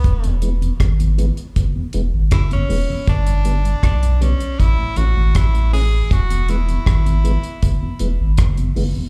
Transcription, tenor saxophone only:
X:1
M:4/4
L:1/16
Q:1/4=79
K:E
V:1 name="Tenor saxophone"
B,2 z8 z2 E C3 | =D4 D2 C2 E2 F2 E2 G2 | F2 E8 z6 |]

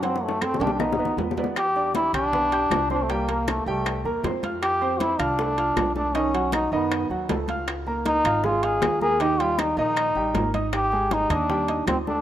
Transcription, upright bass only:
X:1
M:4/4
L:1/8
Q:1/4=157
K:Ephr
V:1 name="Upright bass" clef=bass
^F,,3 B,,,2 D,, E,,2- | E,,3 B,,,3 C,,2- | C,,3 C,,2 E,, F,,2- | F,,3 C,,3 B,,,2- |
B,,,3 ^F,,2 ^D,, ^C,,2- | ^C,,3 _A,,,3 _E,,2- | _E,,3 _B,,,2 A,,, _A,,,2- | _A,,,3 _E,,3 D,,2 |]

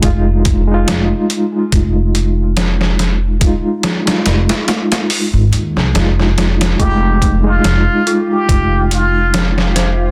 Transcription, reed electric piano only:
X:1
M:4/4
L:1/16
Q:"Swing 16ths" 1/4=71
K:Fm
V:1 name="Reed electric piano"
[A,EF]3 [A,EF]12- [A,EF] | [A,EF]3 [A,EF]8- [A,EF] [A,EF]4 | [A,EF]3 [A,EF]12- [A,EF] |]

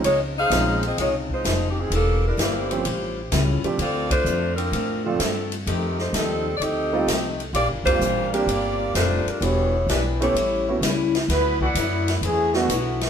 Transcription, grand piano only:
X:1
M:4/4
L:1/8
Q:"Swing" 1/4=128
K:Dphr
V:1 name="Grand piano"
z2 [F,_A,C_DE] z4 z | z3 [F,A,C_DG] z3 [^E,A,^B,=DG] | z4 z [F,A,CDF] z2 | z4 z [G,A,CEF] z2 |
z [G,B,CDF] z [G,B,CDG]3 z2 | [G,=B,D=E_G] z2 [A,B,_DE=G] z [A,_C^CE_G] z2 | z4 z [A,=B,D=E^F] z2 |]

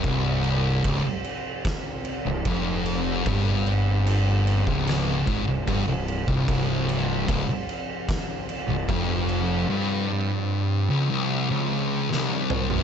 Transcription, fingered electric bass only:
X:1
M:4/4
L:1/16
Q:1/4=75
K:Dblyd
V:1 name="Fingered electric bass" clef=bass
C,,,4 D,,, z6 C,,, F,,,4 | G,,,6- G,,, D,,,3 A,,, C,,, G,,, C,,,2 C,,, | C,,,4 D,,, z6 C,,, F,,,4 | z16 |]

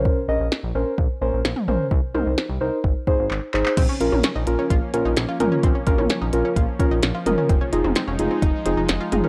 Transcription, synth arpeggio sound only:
X:1
M:4/4
L:1/16
Q:1/4=129
K:Bbm
V:1 name="Synth arpeggio sound"
z16 | z16 | C D F D D E2 D F2 D E2 F E D | C D F D D E2 D F2 D E2 F E D |
C D E C C D2 C E2 C E2 F E D |]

